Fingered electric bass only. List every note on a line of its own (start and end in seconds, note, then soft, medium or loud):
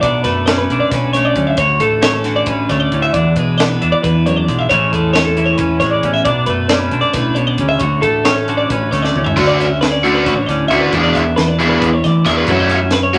0.03 0.23 B1 loud
0.25 0.66 F#2 medium
0.69 0.80 B1 loud
0.91 1.32 B1 medium
1.36 1.56 D2 medium
1.58 1.78 D2 medium
1.80 2.43 A1 medium
2.47 2.67 A1 medium
2.70 2.90 D2 medium
2.92 3.13 D2 medium
3.14 3.35 E2 loud
3.37 3.78 B1 medium
3.83 3.92 E2 medium
4.04 4.45 E2 medium
4.49 4.69 B1 medium
4.71 4.91 A1 medium
4.93 5.55 E2 medium
5.58 5.79 E2 medium
5.81 6.01 A1 medium
6.04 6.24 A1 medium
6.26 6.46 B1 medium
6.48 6.88 F#2 medium
6.91 7.02 B1 loud
7.14 7.55 B1 medium
7.58 7.79 D2 medium
7.80 8.01 D2 medium
8.03 8.66 A1 medium
8.70 8.90 A1 medium
8.92 9.13 D2 medium
9.15 9.35 D2 medium
9.37 10.28 D2 medium
10.27 10.47 A1 medium
10.49 10.69 D2 medium
10.71 10.91 D2 medium
10.92 11.13 E2 medium
11.15 11.36 E2 medium
11.39 11.79 E2 medium
11.81 12.02 E2 medium
12.05 12.25 E3 medium
12.27 12.47 E2 medium
12.48 13.18 F#2 medium